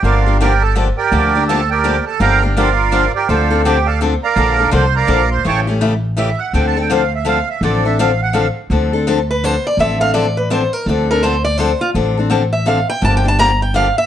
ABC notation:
X:1
M:3/4
L:1/16
Q:"Swing" 1/4=166
K:Dm
V:1 name="Accordion"
[FBdf]4 [GBdg]2 [Aa]2 z2 [GBdg]2- | [GBdg]4 [Aa]2 [GBdg]4 [Aa]2 | [Bfgb]2 z2 [FBdf]6 [GBdg]2 | [Fcdf]4 [Gg]2 [Adfa]2 z2 [Bdfb]2- |
[Bdfb]4 [cc']2 [Bdfb]4 [cc']2 | [^cga^c']2 z6 e2 ^f2 | (3g2 a2 g2 f2 e2 f2 e2 | d2 e2 f2 ^f2 =f2 z2 |
z12 | z12 | z12 | z12 |
z12 |]
V:2 name="Steel-string acoustic guitar"
z12 | z12 | z12 | z12 |
z12 | z12 | z12 | z12 |
z6 =B2 c2 d2 | e2 f2 d2 =B2 c2 _B2 | A2 B2 c2 d2 c2 F2 | z6 e2 f2 g2 |
(3a2 g2 a2 b2 g2 f2 e2 |]
V:3 name="Steel-string acoustic guitar"
[D,F,B,DG]2 [B,DG]2 [D,F,B,DG] z3 [D,F,B,DG] z3 | [D,F,B,DG]2 [B,DG]2 [D,F,B,DG] z3 [D,F,B,DG] z3 | [D,F,B,DG]2 [B,DG]2 [D,F,B,DG] z3 [D,F,B,DG] z3 | [D,F,CDA]2 [CDA]2 [D,F,CDA] z3 [D,F,CDA] z3 |
[D,F,B,DA]2 [B,DA]2 [D,F,B,DA] z3 [D,F,B,DA] z3 | [^C,E,A,^CG]2 [A,CG]2 [C,E,A,CG] z3 [C,E,A,CG] z3 | [D,F,CDA]2 [CDA]2 [D,F,CDA] z3 [D,F,CDA] z3 | [D,F,CDA]2 [CDA]2 [D,F,CDA] z3 [D,F,CDA] z3 |
[D,F,CDA]2 [CDA]2 [D,F,CDA] z3 [D,F,CDA] z3 | [D,F,CDA]2 [CDA]2 [D,F,CDA] z3 [D,F,CDA] z3 | [D,F,CDA]2 [CDA]2 [D,F,CDA] z3 [D,F,CDA] z3 | [D,F,CDA]2 [CDA]2 [D,F,CDA] z3 [D,F,CDA] z3 |
[D,F,B,DG]2 [B,DG]2 [D,F,B,DG] z3 [D,F,B,DG] z3 |]
V:4 name="Upright bass" clef=bass
G,,,12 | D,,12 | G,,,12 | D,,12 |
B,,,4 C,,4 B,,,4 | A,,,12 | D,,12 | A,,,12 |
D,,12 | A,,,12 | D,,12 | A,,,12 |
G,,,12 |]